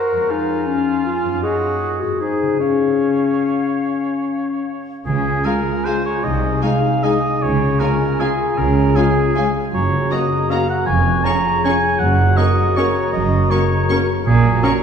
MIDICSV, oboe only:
0, 0, Header, 1, 2, 480
1, 0, Start_track
1, 0, Key_signature, -5, "major"
1, 0, Tempo, 374766
1, 386, Time_signature, 3, 2, 24, 8
1, 2317, Tempo, 407886
1, 5677, Tempo, 396040
1, 8557, Tempo, 383877
1, 14317, Tempo, 374065
1, 18400, End_track
2, 0, Start_track
2, 0, Title_t, "Oboe"
2, 0, Program_c, 0, 68
2, 0, Note_on_c, 0, 66, 52
2, 377, Note_on_c, 0, 65, 55
2, 397, Note_off_c, 0, 66, 0
2, 1824, Note_off_c, 0, 65, 0
2, 1834, Note_on_c, 0, 66, 57
2, 2449, Note_off_c, 0, 66, 0
2, 2782, Note_on_c, 0, 68, 47
2, 3215, Note_off_c, 0, 68, 0
2, 3248, Note_on_c, 0, 73, 52
2, 5875, Note_off_c, 0, 73, 0
2, 6154, Note_on_c, 0, 68, 61
2, 6628, Note_on_c, 0, 70, 61
2, 6646, Note_off_c, 0, 68, 0
2, 7117, Note_on_c, 0, 72, 64
2, 7136, Note_off_c, 0, 70, 0
2, 7359, Note_off_c, 0, 72, 0
2, 7365, Note_on_c, 0, 73, 62
2, 7589, Note_on_c, 0, 75, 66
2, 7607, Note_off_c, 0, 73, 0
2, 8046, Note_off_c, 0, 75, 0
2, 8053, Note_on_c, 0, 77, 69
2, 8544, Note_on_c, 0, 75, 69
2, 8563, Note_off_c, 0, 77, 0
2, 9034, Note_on_c, 0, 73, 66
2, 9053, Note_off_c, 0, 75, 0
2, 9505, Note_on_c, 0, 70, 67
2, 9523, Note_off_c, 0, 73, 0
2, 10005, Note_on_c, 0, 68, 55
2, 10024, Note_off_c, 0, 70, 0
2, 10479, Note_on_c, 0, 70, 66
2, 10497, Note_off_c, 0, 68, 0
2, 10950, Note_on_c, 0, 68, 57
2, 10969, Note_off_c, 0, 70, 0
2, 11693, Note_off_c, 0, 68, 0
2, 11928, Note_on_c, 0, 73, 72
2, 12403, Note_on_c, 0, 75, 64
2, 12422, Note_off_c, 0, 73, 0
2, 12883, Note_on_c, 0, 77, 72
2, 12902, Note_off_c, 0, 75, 0
2, 13116, Note_off_c, 0, 77, 0
2, 13123, Note_on_c, 0, 78, 68
2, 13324, Note_off_c, 0, 78, 0
2, 13331, Note_on_c, 0, 80, 80
2, 13808, Note_on_c, 0, 82, 76
2, 13827, Note_off_c, 0, 80, 0
2, 14298, Note_off_c, 0, 82, 0
2, 14305, Note_on_c, 0, 80, 77
2, 14757, Note_on_c, 0, 78, 82
2, 14777, Note_off_c, 0, 80, 0
2, 15241, Note_on_c, 0, 75, 78
2, 15260, Note_off_c, 0, 78, 0
2, 15757, Note_on_c, 0, 73, 65
2, 15776, Note_off_c, 0, 75, 0
2, 16205, Note_off_c, 0, 73, 0
2, 16213, Note_on_c, 0, 75, 75
2, 16705, Note_on_c, 0, 73, 66
2, 16724, Note_off_c, 0, 75, 0
2, 17451, Note_off_c, 0, 73, 0
2, 17676, Note_on_c, 0, 68, 84
2, 18151, Note_on_c, 0, 70, 69
2, 18170, Note_off_c, 0, 68, 0
2, 18400, Note_off_c, 0, 70, 0
2, 18400, End_track
0, 0, End_of_file